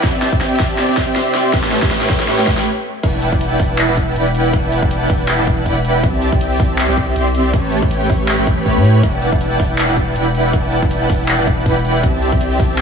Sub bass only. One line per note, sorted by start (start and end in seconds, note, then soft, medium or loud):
3.03 3.30 E1 medium
3.32 3.58 E1 loud
3.60 3.87 E1 loud
3.89 4.14 E1 loud
4.16 4.52 E1 loud
4.53 4.80 E1 loud
4.82 5.08 E1 loud
5.10 5.37 E1 loud
5.39 5.64 E1 loud
5.66 6.05 E1 loud
6.03 6.30 C2 loud
6.32 6.58 C2 loud
6.60 6.87 C2 loud
6.89 7.14 C2 loud
7.16 7.55 C2 loud
7.53 7.80 A1 loud
7.82 8.08 A1 loud
8.10 8.37 A1 loud
8.39 8.55 A1 loud
8.57 8.78 A1 medium
8.76 9.02 A2 loud
9.03 9.30 E1 loud
9.32 9.58 E1 medium
9.60 9.87 E1 loud
9.89 10.14 E1 loud
10.16 10.52 E1 medium
10.53 10.80 E1 loud
10.82 11.08 E1 loud
11.10 11.37 E1 loud
11.39 11.64 E1 loud
11.66 12.02 E1 loud
12.03 12.30 C2 loud
12.32 12.58 C2 loud
12.60 12.81 C2 loud